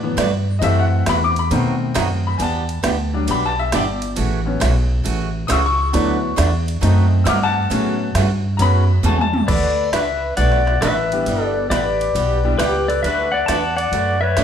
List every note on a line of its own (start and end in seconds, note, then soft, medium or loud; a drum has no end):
0.00 0.16 A2 loud
0.00 0.16 E3 medium
0.00 0.16 F#3 soft
0.00 0.17 B3 medium
0.17 0.61 G2 loud
0.17 0.30 D3 medium
0.17 0.29 F#3 medium
0.17 0.30 A3 medium
0.17 0.30 D4 medium
0.17 0.30 F#4 loud
0.17 0.30 B4 loud
0.17 snare medium
0.17 hi-hat pedal medium
0.17 ride medium
0.59 1.05 F#2 medium
0.59 0.85 C3 medium
0.59 1.32 E3 medium
0.59 0.85 E3 medium
0.59 0.85 A3 medium
0.59 1.32 A3 soft
0.59 1.32 C4 medium
0.59 0.85 E4 medium
0.59 0.85 F#4 medium
0.59 0.62 D#5 medium
0.59 ride medium
0.63 0.77 E5 loud
0.79 1.07 F#5 medium
1.06 1.50 E2 loud
1.06 1.19 C3 medium
1.06 1.19 E3 medium
1.06 1.19 A3 medium
1.06 1.19 E4 medium
1.06 1.19 F#4 medium
1.06 1.22 B5 loud
1.06 snare medium
1.06 hi-hat pedal medium
1.06 ride medium
1.24 1.37 D6 loud
1.36 1.62 B5 medium
1.36 ride medium
1.51 1.74 B2 medium
1.51 1.94 B2 loud
1.51 2.35 D#3 medium
1.51 1.74 F#3 medium
1.51 1.74 A3 medium
1.51 2.36 A3 medium
1.51 2.36 C4 medium
1.51 1.74 D#4 medium
1.51 1.74 F#4 medium
1.51 ride medium
1.94 2.39 F#2 loud
1.94 2.07 B2 medium
1.94 2.07 F#3 medium
1.94 2.07 A3 medium
1.94 2.07 D#4 loud
1.94 2.07 F#4 medium
1.94 snare medium
1.94 hi-hat pedal medium
1.94 ride medium
2.27 2.40 B5 medium
2.38 2.83 E2 medium
2.38 2.62 E3 medium
2.38 2.62 B3 medium
2.38 2.62 D4 medium
2.38 2.63 G4 medium
2.38 2.41 G#5 medium
2.38 ride medium
2.42 3.27 A5 medium
2.69 ride soft
2.83 3.27 D2 loud
2.83 2.95 E3 medium
2.83 2.95 B3 medium
2.83 2.96 D4 medium
2.83 2.96 G4 medium
2.83 snare medium
2.83 hi-hat pedal medium
2.83 ride medium
3.13 3.39 F#3 medium
3.13 3.39 G3 medium
3.13 3.39 D4 medium
3.27 3.72 B1 medium
3.27 3.51 E3 medium
3.27 3.51 B3 medium
3.27 3.51 D4 medium
3.27 3.51 G4 medium
3.27 3.44 B5 loud
3.27 ride medium
3.46 3.59 A5 loud
3.59 3.73 E5 loud
3.72 4.16 G1 loud
3.72 3.84 E3 medium
3.72 3.85 B3 medium
3.72 3.85 D4 medium
3.72 3.85 G4 medium
3.72 4.17 D5 medium
3.72 snare medium
3.72 hi-hat pedal medium
3.72 ride medium
4.02 ride medium
4.16 4.60 A1 loud
4.16 4.39 C#3 medium
4.16 4.39 E3 medium
4.16 4.39 A3 medium
4.16 4.39 C#4 medium
4.16 4.40 F#4 medium
4.16 ride medium
4.45 4.71 F#3 soft
4.45 4.71 B3 soft
4.45 4.72 C#4 medium
4.60 5.05 B1 medium
4.60 4.73 C#3 medium
4.60 4.73 E3 medium
4.60 4.73 A3 medium
4.60 4.73 C#4 medium
4.60 4.73 F#4 medium
4.60 snare medium
4.60 hi-hat pedal medium
4.60 ride medium
5.04 5.49 A1 loud
5.04 5.27 C#3 medium
5.04 5.27 E3 medium
5.04 5.28 A3 medium
5.04 5.28 C#4 medium
5.04 5.28 F#4 medium
5.04 ride medium
5.47 5.93 C#2 loud
5.47 5.61 C#3 medium
5.47 5.61 E3 medium
5.47 5.61 A3 medium
5.47 5.61 C#4 medium
5.47 5.61 F#4 loud
5.47 5.64 C#6 medium
5.47 5.50 D#6 medium
5.47 snare medium
5.47 hi-hat pedal medium
5.47 ride medium
5.52 5.65 E6 loud
5.66 6.51 C#6 loud
5.93 6.37 D2 medium
5.93 6.16 D3 medium
5.93 6.27 F#3 medium
5.93 6.16 F#3 medium
5.93 6.16 A3 medium
5.93 6.27 B3 medium
5.93 6.16 D4 medium
5.93 6.28 E4 medium
5.93 6.17 F#4 medium
5.93 6.17 B4 medium
5.93 ride medium
6.36 6.81 E2 loud
6.36 6.49 D3 medium
6.36 6.50 F#3 medium
6.36 6.50 A3 medium
6.36 6.50 D4 medium
6.36 6.50 F#4 medium
6.36 6.50 B4 medium
6.36 snare medium
6.36 hi-hat pedal medium
6.36 ride medium
6.68 ride medium
6.81 7.25 F#2 loud
6.81 7.04 B2 medium
6.81 7.04 F#3 medium
6.81 7.66 A3 medium
6.81 7.05 A3 medium
6.81 7.67 C4 medium
6.81 7.05 D#4 medium
6.81 7.67 D#4 medium
6.81 7.05 F#4 medium
6.81 ride medium
7.24 7.69 G2 loud
7.24 7.38 B2 medium
7.24 7.38 F#3 medium
7.24 7.38 A3 medium
7.24 7.39 D#4 medium
7.24 7.39 F#4 medium
7.24 7.41 D6 medium
7.24 7.28 E6 medium
7.24 snare medium
7.24 hi-hat pedal medium
7.24 ride medium
7.29 7.42 F6 medium
7.43 8.27 F#5 loud
7.43 8.28 A5 loud
7.70 8.14 A2 medium
7.70 7.93 C#3 medium
7.70 7.93 E3 medium
7.70 8.05 F#3 medium
7.70 7.93 A3 medium
7.70 8.05 B3 medium
7.70 7.94 C#4 medium
7.70 8.05 C#4 medium
7.70 7.94 F#4 medium
7.70 ride medium
8.15 8.58 G2 loud
8.15 8.28 C#3 medium
8.15 8.28 E3 medium
8.15 8.28 A3 medium
8.15 8.28 C#4 medium
8.15 8.28 F#4 medium
8.15 snare medium
8.15 hi-hat pedal medium
8.15 ride medium
8.57 9.02 F#2 loud
8.57 8.82 C#3 medium
8.57 8.82 E3 medium
8.57 8.86 F#3 medium
8.57 8.83 A3 medium
8.57 8.86 B3 medium
8.57 8.87 C#4 medium
8.57 8.83 C#4 medium
8.57 8.83 F#4 medium
8.57 8.60 A#5 medium
8.57 ride medium
8.62 9.04 B5 loud
9.03 9.47 E2 medium
9.03 9.16 C#3 medium
9.03 9.16 E3 loud
9.03 9.16 A3 loud
9.03 9.16 C#4 medium
9.03 9.16 F#4 loud
9.03 9.19 A5 medium
9.03 hi-hat pedal medium
9.03 mid tom medium
9.17 9.22 G#5 medium
9.17 mid tom medium
9.21 9.49 A5 loud
9.33 mid tom loud
9.48 9.91 D2 medium
9.48 9.71 D3 medium
9.48 9.71 F#3 medium
9.48 9.71 A3 medium
9.48 9.72 D4 medium
9.48 9.72 F#4 medium
9.48 9.90 A4 medium
9.48 9.89 B4 medium
9.48 9.72 B4 medium
9.48 9.92 D5 loud
9.48 kick medium
9.48 crash medium
9.93 10.36 C#2 medium
9.93 10.05 D3 medium
9.93 10.05 F#3 medium
9.93 10.05 A3 medium
9.93 10.05 D4 medium
9.93 10.05 F#4 medium
9.93 10.34 B4 medium
9.93 10.05 B4 medium
9.93 10.35 B4 medium
9.93 10.34 E5 medium
9.93 snare medium
9.93 hi-hat pedal medium
9.93 ride medium
10.36 10.80 B1 medium
10.36 10.60 D3 medium
10.36 10.60 F#3 medium
10.36 10.61 A3 medium
10.36 10.61 D4 medium
10.36 10.61 F#4 medium
10.36 10.61 B4 medium
10.36 10.78 D5 medium
10.36 10.79 D5 medium
10.36 10.83 F#5 medium
10.36 ride medium
10.52 snare soft
10.67 snare soft
10.81 11.25 A1 loud
10.81 10.94 D3 medium
10.81 10.94 F#3 medium
10.81 10.94 A3 medium
10.81 10.94 D4 medium
10.81 10.94 F#4 medium
10.81 11.42 B4 medium
10.81 11.67 B4 medium
10.81 10.95 B4 medium
10.81 11.47 E5 medium
10.81 snare medium
10.81 hi-hat pedal medium
10.81 ride medium
11.12 11.68 G3 medium
11.12 11.68 B3 medium
11.12 11.68 D4 medium
11.12 11.68 E4 medium
11.12 11.68 G4 medium
11.12 ride medium
11.26 11.69 G1 medium
11.26 11.50 G3 medium
11.26 11.50 B3 medium
11.26 11.50 E4 medium
11.26 11.50 G4 medium
11.26 ride medium
11.42 11.66 A4 medium
11.47 11.70 D5 medium
11.69 12.13 A1 medium
11.69 11.83 G3 medium
11.69 11.83 B3 medium
11.69 11.83 E4 medium
11.69 12.55 G4 medium
11.69 11.83 G4 medium
11.69 12.56 B4 medium
11.69 12.62 D5 medium
11.69 snare medium
11.69 hi-hat pedal medium
11.69 ride medium
12.01 ride soft
12.15 12.58 B1 medium
12.15 12.37 G3 medium
12.15 12.38 B3 medium
12.15 12.38 E4 medium
12.15 12.38 G4 medium
12.15 ride medium
12.44 12.58 G3 medium
12.44 12.58 B3 medium
12.44 12.58 D4 medium
12.44 12.58 E4 medium
12.44 12.58 G4 medium
12.59 13.02 C#2 medium
12.59 12.71 G3 medium
12.59 12.71 B3 medium
12.59 12.71 E4 medium
12.59 12.87 G4 medium
12.59 12.72 G4 medium
12.59 12.88 G4 medium
12.59 12.89 B4 medium
12.59 snare medium
12.59 hi-hat pedal medium
12.59 ride medium
12.88 13.02 A4 medium
12.88 13.03 B4 medium
12.88 13.02 D5 loud
12.88 ride soft
13.03 13.47 D2 medium
13.03 13.27 D3 medium
13.03 13.27 F#3 medium
13.03 13.27 A3 medium
13.03 13.27 D4 medium
13.03 13.27 F#4 medium
13.03 13.31 B4 medium
13.03 13.32 B4 medium
13.03 13.28 B4 medium
13.03 13.34 E5 loud
13.03 ride medium
13.32 13.46 D5 medium
13.32 13.47 D5 medium
13.32 13.48 F#5 loud
13.46 13.91 E2 medium
13.46 13.61 D3 medium
13.46 13.61 F#3 medium
13.46 13.61 A3 medium
13.46 13.61 F#4 medium
13.46 13.75 D5 medium
13.46 13.75 F#5 medium
13.46 13.78 A5 loud
13.46 snare medium
13.46 hi-hat pedal medium
13.46 ride medium
13.50 13.61 D4 medium
13.50 13.61 B4 medium
13.77 14.19 D5 medium
13.77 14.20 D5 medium
13.77 14.19 F#5 medium
13.77 ride medium
13.92 14.35 F#2 medium
13.92 14.16 D3 medium
13.92 14.16 F#3 medium
13.92 14.16 A3 medium
13.92 14.16 D4 medium
13.92 14.16 F#4 medium
13.92 14.16 B4 medium
13.92 ride medium
14.21 14.44 B4 medium
14.21 14.44 C#5 medium
14.21 14.44 E5 loud
14.37 14.44 G2 medium
14.37 14.44 D3 medium
14.37 14.44 F#3 medium
14.37 14.44 A3 medium
14.37 14.44 D4 medium
14.37 14.44 F#4 medium
14.37 14.44 B4 medium
14.37 snare medium
14.37 hi-hat pedal medium
14.37 ride medium